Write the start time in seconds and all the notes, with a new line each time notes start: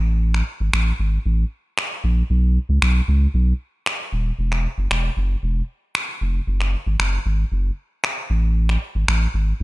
Already playing: A1
0.34 finger snap
0.60 G#1
0.73 A1, finger snap
0.99 G#1
1.26 A1
1.78 finger snap
2.04 A#1
2.30 B1
2.69 C#2
2.82 B1, finger snap
3.08 C#2
3.34 B1
3.86 finger snap
4.13 D#1
4.39 E1
4.52 finger snap
4.78 F#1
4.91 E1, finger snap
5.17 F#1
5.43 E1
5.95 finger snap
6.21 F1
6.47 F#1
6.61 finger snap
6.87 G#1
7.00 F#1, finger snap
7.26 G#1
7.52 F#1
8.04 finger snap
8.30 A1
8.69 finger snap
8.95 G#1
9.08 A1, finger snap
9.34 G#1